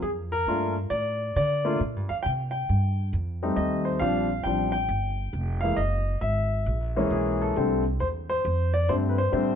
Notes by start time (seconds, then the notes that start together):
0.02 F2 G#4
0.32 A#4
0.47 G2 A3 A#3 D4 F4
0.90 A2 D5
1.36 D3 D5
1.65 A3 A#3 D4 F4
1.80 A#2
1.96 G2
2.09 F2 F5
2.23 C3 G5
2.51 G5
2.69 G2
3.13 F2
3.43 G3 A3 C4 D#4
3.56 D#2 D#5
3.85 C5
3.99 A#1 F3 G3 C4 D4 F5
4.44 A1 F3 G3 C4 D4 G5
4.72 G5
4.88 G1
5.33 F1
5.61 E3 G#3 A#3 E4 F5
5.77 F#1 D#5
6.21 G#1 E5
6.66 A#1
6.96 E3 G#3 A#3 C#4
7.10 B1 G#4
7.42 A4
7.56 C2 D3 G3 A3 C4
8.00 E2 C5
8.30 C5
8.45 F2
8.74 D5
8.89 G2 D3 G3 A3 C4 C5
9.09 B4
9.18 C5
9.32 A2 D3 G3 A3 C4